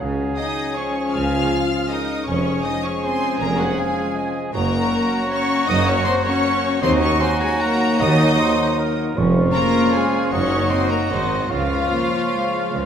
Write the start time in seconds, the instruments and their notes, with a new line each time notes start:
Already playing: bassoon F#3
0.00 tuba C#2, double bass section C#2, cello section C#3, french horn section G#3 C#4, trumpet G#4, cor anglais F5, flute G#5
0.37 viola section D#4, violin section D#5 D#6, cor anglais G#5
0.76 bassoon F3, viola section C#4, violin section C#5 C#6
1.14 double bass section C#2, tuba C#2, cello section C#3, viola section F4, violin section F5 F6, cor anglais G#5
1.90 viola section D#4, cor anglais A#4, violin section D#5 D#6
2.26 double bass section F1, tuba F1, cello section F2, bassoon F3, french horn section G#3 C#4, viola section C#4, trumpet G#4, violin section C#5 C#6, flute G#5, cor anglais G#5
2.64 viola section D#4, violin section D#5 D#6
2.83 viola section C#4, violin section C#5 C#6
3.04 viola section C4, violin section C5 C6
3.40 tuba F1, double bass section F1, cello section F2, viola section A#3, violin section A#4 A#5
3.58 viola section F#3, violin section F#4 F#5
3.77 viola section G#3, violin section G#4 G#5, cor anglais F5
4.16 cor anglais D#5
4.53 double bass section F#1, tuba F#1, cello section F#2, bassoon F#3, french horn section A#3 C#4, viola section A#3, trumpet F#4, violin section A#4 A#5, cor anglais C#5, flute A#5
5.30 viola section C#4, violin section C#5 C#6
5.66 tuba F#1, double bass section F#1, cello section F#2, viola section D#4, violin section D#5 D#6
5.85 viola section C#4, violin section C#5 C#6
6.05 viola section C4, violin section C5 C6
6.24 viola section C#4, violin section C#5 C#6
6.45 cor anglais C#5
6.81 cello section D#2, double bass section D#2, tuba D#2, bassoon F#3, french horn section A#3 D#4, viola section C4, trumpet F#4, violin section C5 C6, cor anglais D#5, flute A#5
7.01 viola section C#4, violin section C#5 C#6
7.20 viola section C4, violin section C5 C6, cor anglais G#5
7.40 viola section G#3, violin section G#4 G#5
7.59 viola section A#3, violin section A#4 A#5, cor anglais F#5
7.99 double bass section D#2, cello section D#2, tuba D#2, viola section D#4, violin section D#5 D#6, cor anglais D#5
8.39 cor anglais C5
8.79 cor anglais A#4
9.16 tuba F1, double bass section F1, cello section F2, bassoon F3, french horn section G#3 C#4, trumpet F4, flute C#6
9.53 viola section A#3, violin section A#4 A#5, cor anglais C#5
9.93 viola section G#3, violin section G#4 G#5
10.31 tuba F#1, double bass section F#1, cello section F#2, bassoon F#3, french horn section A#3 D#4, viola section C#4, trumpet F#4, violin section C#5 C#6, flute D#6
10.70 viola section C4, violin section C5 C6, cor anglais D#5
10.90 viola section A#3, violin section A#4 A#5
11.10 tuba G#1, double bass section G#1, cello section G#2, viola section D#3, french horn section G#3 C4, violin section D#4 D#5, cor anglais C5, flute C6
11.49 tuba C#2, double bass section C#2, cello section C#3, viola section F3, bassoon F3, french horn section G#3 C#4, violin section F4 F5, trumpet F4, cor anglais C#5, flute C#6
11.90 french horn section A#3
12.33 french horn section G#3
12.72 double bass section C#2, tuba C#2, cello section C#3, french horn section C#4